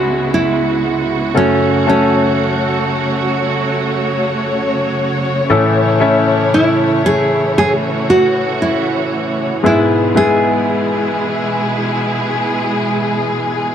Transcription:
0.00 1.32 C#2 medium
0.00 1.32 G#2 medium
0.00 1.32 C#3 medium
0.00 1.32 G#3 medium
0.00 1.32 B3 medium
0.00 1.32 E4 medium
0.00 0.35 F#4 medium
0.00 5.45 F#4 medium
0.34 1.33 E4 medium
1.34 5.46 F#2 soft
1.34 5.45 C#3 soft
1.34 9.59 C#3 medium
1.34 5.45 F#3 medium
1.34 1.85 A3 medium
1.34 5.46 A3 medium
1.34 1.85 C#4 medium
1.34 1.88 C#4 medium
1.34 1.85 F#4 medium
1.34 1.86 A4 medium
1.34 9.59 C#5 medium
1.86 3.84 A3 medium
1.86 3.84 C#4 medium
1.86 4.95 C#4 medium
1.86 3.84 F#4 medium
1.86 3.85 A4 medium
5.49 9.60 A2 medium
5.49 13.75 E3 medium
5.49 9.60 E3 medium
5.49 9.59 A3 medium
5.49 5.98 A3 medium
5.49 5.99 C#4 medium
5.49 7.54 E4 medium
5.49 5.99 E4 medium
5.49 6.00 A4 medium
6.00 7.97 A3 medium
6.00 7.98 C#4 medium
6.00 7.98 E4 medium
6.00 7.98 C#5 medium
6.54 7.02 E4 medium
7.06 7.57 G#4 medium
7.57 9.62 F#4 medium
7.57 7.72 G#4 medium
8.10 8.63 F#4 medium
8.62 9.65 E4 medium
9.63 13.74 G#2 medium
9.63 13.75 B2 medium
9.63 10.13 G#3 medium
9.63 13.75 G#3 medium
9.63 10.13 B3 medium
9.63 13.74 E4 medium
9.63 10.13 E4 medium
9.63 10.18 E4 medium
9.63 13.75 G#4 medium
9.63 10.14 G#4 medium
10.15 12.12 G#3 medium
10.15 12.12 B3 medium
10.15 12.13 E4 medium
10.15 12.13 G#4 medium
10.15 13.23 G#4 medium

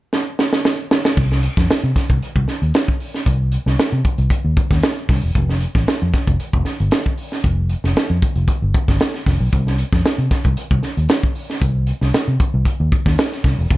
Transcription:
0.13 snare medium
0.39 snare medium
0.53 snare medium
0.65 snare medium
0.91 snare loud
1.05 snare loud
1.17 1.47 C2 loud
1.17 kick medium
1.17 crash medium
1.32 snare soft
1.43 closed hi-hat medium
1.57 1.66 F2 medium
1.57 kick medium
1.57 snare soft
1.70 muted fingered electric bass stroke soft
1.70 snare loud
1.70 closed hi-hat medium
1.83 1.93 C3 medium
1.96 kick medium
1.96 snare soft
1.96 closed hi-hat medium
2.09 2.19 C2 medium
2.09 kick medium
2.09 closed hi-hat medium
2.23 closed hi-hat medium
2.36 2.45 C2 medium
2.36 kick medium
2.48 snare soft
2.48 closed hi-hat medium
2.62 2.71 D#2 medium
2.62 closed hi-hat soft
2.74 snare loud
2.74 closed hi-hat loud
2.88 kick medium
3.00 open hi-hat medium
3.14 snare soft
3.26 3.56 C2 loud
3.26 kick medium
3.26 closed hi-hat medium
3.52 closed hi-hat medium
3.66 3.75 C2 medium
3.66 snare soft
3.79 snare loud
3.79 closed hi-hat medium
3.92 4.01 C3 medium
4.05 kick medium
4.05 closed hi-hat medium
4.18 4.27 C2 medium
4.18 closed hi-hat soft
4.30 kick medium
4.30 closed hi-hat medium
4.45 4.54 D#2 medium
4.57 kick medium
4.57 closed hi-hat medium
4.71 4.80 D#2 medium
4.71 kick medium
4.71 snare soft
4.71 closed hi-hat soft
4.83 snare loud
4.83 closed hi-hat loud
5.09 5.19 C2 medium
5.09 kick medium
5.09 snare soft
5.09 open hi-hat medium
5.23 5.32 E1 medium
5.35 5.65 F1 loud
5.35 kick medium
5.35 closed hi-hat medium
5.49 snare soft
5.61 closed hi-hat medium
5.75 5.84 A1 medium
5.75 kick medium
5.75 snare soft
5.88 muted fingered electric bass stroke soft
5.88 snare loud
5.88 closed hi-hat medium
6.02 6.11 F2 medium
6.13 kick loud
6.13 snare soft
6.13 closed hi-hat medium
6.27 6.36 F1 medium
6.27 kick medium
6.27 closed hi-hat medium
6.40 closed hi-hat medium
6.53 6.62 F1 medium
6.53 kick medium
6.65 snare soft
6.65 closed hi-hat medium
6.80 6.89 G1 medium
6.80 closed hi-hat soft
6.91 snare loud
6.91 closed hi-hat medium
7.06 kick medium
7.18 open hi-hat medium
7.32 snare soft
7.44 7.73 F1 loud
7.44 kick medium
7.44 closed hi-hat medium
7.69 closed hi-hat medium
7.84 7.93 F1 medium
7.84 snare soft
7.96 muted fingered electric bass stroke soft
7.96 snare loud
7.96 closed hi-hat medium
8.10 8.19 F2 medium
8.22 kick loud
8.22 closed hi-hat medium
8.36 8.45 F1 medium
8.36 closed hi-hat medium
8.48 kick medium
8.48 closed hi-hat medium
8.62 8.71 G1 medium
8.74 kick loud
8.74 closed hi-hat medium
8.88 8.97 G1 medium
8.88 kick loud
8.88 snare soft
8.88 closed hi-hat medium
9.00 snare loud
9.00 closed hi-hat loud
9.15 snare soft
9.26 9.37 F1 medium
9.26 kick medium
9.26 snare soft
9.26 open hi-hat medium
9.40 9.49 B1 loud
9.53 9.82 C2 loud
9.53 kick medium
9.53 closed hi-hat loud
9.67 snare soft
9.78 closed hi-hat medium
9.93 10.02 F2 medium
9.93 kick loud
9.93 snare soft
10.05 muted fingered electric bass stroke soft
10.05 snare loud
10.05 closed hi-hat loud
10.18 10.28 C3 medium
10.31 kick medium
10.31 snare soft
10.31 closed hi-hat medium
10.44 10.54 C2 medium
10.44 kick medium
10.44 closed hi-hat medium
10.57 closed hi-hat medium
10.71 10.80 C2 medium
10.71 kick medium
10.83 snare soft
10.83 closed hi-hat medium
10.97 11.06 D#2 medium
10.97 closed hi-hat soft
11.09 snare loud
11.09 closed hi-hat loud
11.23 kick medium
11.35 open hi-hat medium
11.50 snare soft
11.61 11.91 C2 loud
11.61 kick loud
11.61 closed hi-hat loud
11.87 closed hi-hat medium
12.01 12.11 C2 medium
12.01 snare soft
12.14 snare loud
12.14 closed hi-hat medium
12.28 12.37 C3 medium
12.40 kick loud
12.40 closed hi-hat medium
12.54 12.63 C2 medium
12.65 kick medium
12.65 closed hi-hat medium
12.80 12.89 D#2 medium
12.92 kick medium
12.92 closed hi-hat medium
13.06 13.15 D#2 medium
13.06 kick loud
13.06 snare soft
13.06 closed hi-hat soft
13.18 snare loud
13.18 closed hi-hat loud
13.32 snare soft
13.44 13.55 C2 medium
13.44 kick medium
13.44 snare soft
13.44 open hi-hat medium
13.58 13.67 E1 medium
13.71 13.78 F1 loud
13.71 kick medium
13.71 closed hi-hat medium

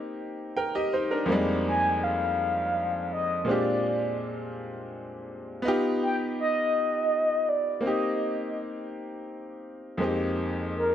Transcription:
0.00 1.23 A#3 medium
0.00 1.24 C4 medium
0.00 0.54 D#4 medium
0.00 0.55 G4 medium
0.57 0.74 A#4 soft
0.57 0.73 G5 medium
0.75 0.92 G4 medium
0.75 0.92 D#5 medium
0.93 1.10 D#4 medium
0.93 1.10 C5 medium
1.11 1.45 D4 soft
1.11 1.45 A#4 medium
1.26 3.41 F2 medium
1.26 1.30 G3 medium
1.26 3.42 A#3 medium
1.30 3.44 G3 medium
1.30 3.45 G#3 medium
1.30 3.43 C4 medium
1.30 3.44 D#4 medium
1.67 2.05 G#5 loud
2.03 3.11 F5 loud
3.13 3.51 D#5 loud
3.45 5.60 A#2 medium
3.45 5.60 G#3 medium
3.45 5.61 C4 medium
3.49 5.62 D4 medium
3.49 5.62 F4 medium
3.49 5.63 G4 medium
3.49 4.30 D5 medium
5.62 7.78 B3 medium
5.62 7.79 D#4 medium
5.67 7.80 F4 medium
5.67 7.80 G4 medium
6.03 6.17 G5 loud
6.40 7.50 D#5 loud
7.49 7.84 D5 medium
7.81 9.96 A#3 medium
7.81 9.97 C4 medium
7.85 9.98 D#4 medium
7.85 9.99 G4 medium
7.85 8.62 D#5 loud
9.97 10.95 F2 medium
9.97 10.95 G#3 medium
9.97 10.95 A#3 medium
9.97 10.95 C4 medium
10.02 10.95 D#4 medium
10.02 10.95 G4 medium
10.77 10.95 A#4 loud

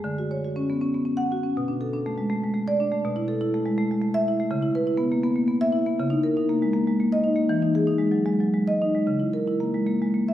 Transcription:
0.04 1.51 D3 medium
0.18 0.39 F#4 medium
0.31 0.52 C#5 medium
0.45 0.64 F#4 medium
0.56 0.76 C#4 medium
0.70 0.82 B3 medium
0.81 1.01 C#4 medium
0.94 1.07 B3 medium
1.05 1.26 C#4 medium
1.17 1.38 F#5 medium
1.32 1.52 F#4 medium
1.43 1.56 C#4 medium
1.57 3.02 B2 medium
1.68 1.89 D4 medium
1.81 2.01 A4 medium
1.93 2.13 D4 medium
2.06 2.26 A3 medium
2.18 2.30 G#3 medium
2.30 2.50 A3 medium
2.44 2.56 G#3 medium
2.54 2.75 A3 medium
2.68 2.88 D5 loud
2.80 3.00 D4 medium
2.92 3.05 A3 medium
3.05 4.48 B2 medium
3.16 3.37 E4 medium
3.28 3.49 A4 medium
3.41 3.61 E4 medium
3.54 3.74 A3 medium
3.66 3.79 G#3 medium
3.78 3.98 A3 medium
3.91 4.04 G#3 medium
4.02 4.22 A3 medium
4.14 4.35 E5 loud
4.28 4.48 E4 medium
4.40 4.52 A3 medium
4.51 5.96 C#3 loud
4.63 4.83 E4 medium
4.75 4.96 B4 medium
4.87 5.08 E4 medium
4.97 5.19 B3 medium
5.12 5.25 A#3 medium
5.23 5.44 B3 medium
5.36 5.49 A#3 medium
5.48 5.69 B3 medium
5.61 5.82 E5 loud
5.72 5.94 E4 medium
5.86 6.00 B3 medium
6.00 7.46 C#3 loud
6.10 6.31 D#4 medium
6.23 6.44 A#4 medium
6.37 6.57 D#4 medium
6.49 6.70 A#3 medium
6.62 6.75 G#3 medium
6.73 6.94 A#3 medium
6.87 7.00 G#3 medium
7.00 7.20 A#3 medium
7.12 7.32 D#5 loud
7.24 7.44 D#4 medium
7.36 7.49 A#3 medium
7.49 9.02 E3 loud
7.62 7.83 D#4 medium
7.75 7.96 G#4 medium
7.87 8.08 D#4 medium
7.98 8.20 G#3 medium
8.12 8.26 F#3 medium
8.26 8.47 G#3 medium
8.40 8.53 F#3 medium
8.54 8.75 G#3 medium
8.68 8.88 D#5 medium
8.82 9.02 D#4 medium
8.95 9.07 G#3 medium
9.07 10.34 C#3 medium
9.20 9.41 E4 medium
9.33 9.55 A#4 medium
9.47 9.68 E4 medium
9.60 9.82 A#3 medium
9.74 9.87 G#3 medium
9.87 10.08 A#3 medium
10.02 10.14 G#3 medium
10.14 10.34 A#3 medium
10.28 10.34 E5 medium

